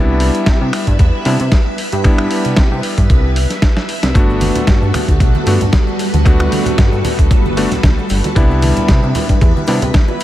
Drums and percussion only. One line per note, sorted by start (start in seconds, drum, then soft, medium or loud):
0.20 open hi-hat loud
0.35 closed hi-hat medium
0.46 kick loud
0.46 snare loud
0.46 closed hi-hat medium
0.73 finger snap medium
0.73 open hi-hat medium
0.87 kick medium
0.87 closed hi-hat medium
0.99 kick loud
0.99 closed hi-hat medium
1.25 open hi-hat loud
1.40 closed hi-hat medium
1.52 kick loud
1.52 snare loud
1.52 closed hi-hat medium
1.78 open hi-hat medium
1.92 closed hi-hat medium
2.04 finger snap medium
2.04 kick loud
2.04 closed hi-hat medium
2.18 finger snap medium
2.31 open hi-hat loud
2.45 closed hi-hat medium
2.56 kick loud
2.56 snare loud
2.56 closed hi-hat medium
2.83 open hi-hat medium
2.98 kick medium
2.98 closed hi-hat medium
3.10 kick loud
3.10 closed hi-hat medium
3.36 open hi-hat loud
3.50 snare soft
3.50 closed hi-hat medium
3.62 kick loud
3.62 snare loud
3.62 closed hi-hat medium
3.77 snare medium
3.89 open hi-hat medium
4.03 snare loud
4.03 closed hi-hat medium
4.15 finger snap medium
4.15 kick loud
4.15 closed hi-hat medium
4.15 high bongo medium
4.15 maracas medium
4.30 maracas soft
4.41 open hi-hat loud
4.41 high conga loud
4.41 maracas loud
4.56 closed hi-hat medium
4.56 high bongo medium
4.56 low conga loud
4.56 maracas soft
4.67 kick loud
4.67 snare loud
4.67 closed hi-hat medium
4.67 maracas medium
4.82 maracas soft
4.94 finger snap medium
4.94 open hi-hat loud
4.94 high conga medium
4.94 low conga medium
4.94 maracas medium
5.08 kick medium
5.08 closed hi-hat medium
5.08 high bongo medium
5.08 maracas soft
5.20 kick loud
5.20 closed hi-hat medium
5.20 maracas soft
5.35 high conga loud
5.35 maracas soft
5.46 open hi-hat loud
5.46 high bongo medium
5.46 maracas medium
5.61 closed hi-hat medium
5.61 low conga medium
5.61 maracas soft
5.73 kick loud
5.73 snare loud
5.73 closed hi-hat medium
5.73 high conga medium
5.73 maracas medium
5.87 maracas soft
5.99 open hi-hat medium
5.99 high bongo medium
5.99 maracas medium
6.14 closed hi-hat medium
6.14 high conga loud
6.14 maracas soft
6.26 finger snap medium
6.26 kick loud
6.26 closed hi-hat medium
6.26 maracas medium
6.40 finger snap medium
6.40 high bongo medium
6.40 maracas soft
6.52 open hi-hat loud
6.52 high conga loud
6.52 maracas medium
6.66 closed hi-hat medium
6.66 low conga loud
6.66 maracas soft
6.78 kick loud
6.78 snare loud
6.78 closed hi-hat medium
6.78 maracas medium
6.93 high bongo medium
6.93 maracas soft
7.05 open hi-hat loud
7.05 high conga medium
7.05 low conga loud
7.05 maracas loud
7.19 kick medium
7.19 closed hi-hat medium
7.19 maracas soft
7.31 kick loud
7.31 closed hi-hat medium
7.31 high bongo medium
7.31 maracas soft
7.45 high conga loud
7.45 maracas soft
7.57 open hi-hat loud
7.57 maracas medium
7.71 snare soft
7.71 closed hi-hat medium
7.71 low conga medium
7.71 maracas soft
7.83 kick loud
7.83 snare loud
7.83 closed hi-hat medium
7.83 high bongo medium
7.83 high conga medium
7.83 maracas medium
7.98 maracas soft
8.09 open hi-hat loud
8.09 maracas loud
8.24 closed hi-hat medium
8.24 high bongo medium
8.24 high conga loud
8.24 maracas soft
8.36 finger snap medium
8.36 kick loud
8.36 closed hi-hat medium
8.36 maracas medium
8.50 maracas soft
8.62 open hi-hat loud
8.62 high conga medium
8.62 maracas loud
8.77 closed hi-hat medium
8.77 high bongo medium
8.77 low conga medium
8.77 maracas soft
8.88 kick loud
8.88 snare loud
8.88 closed hi-hat medium
8.88 maracas soft
9.03 maracas soft
9.15 open hi-hat loud
9.15 high bongo medium
9.15 high conga medium
9.15 low conga loud
9.15 maracas medium
9.29 kick medium
9.29 closed hi-hat medium
9.29 maracas soft
9.41 kick loud
9.41 closed hi-hat medium
9.41 maracas soft
9.57 high conga medium
9.57 maracas soft
9.67 open hi-hat loud
9.67 high bongo soft
9.67 maracas medium
9.81 closed hi-hat medium
9.81 low conga loud
9.81 maracas soft
9.94 kick loud
9.94 snare loud
9.94 closed hi-hat medium
9.94 high conga medium
9.94 maracas soft
10.08 high bongo medium
10.08 maracas soft
10.20 open hi-hat loud
10.20 maracas medium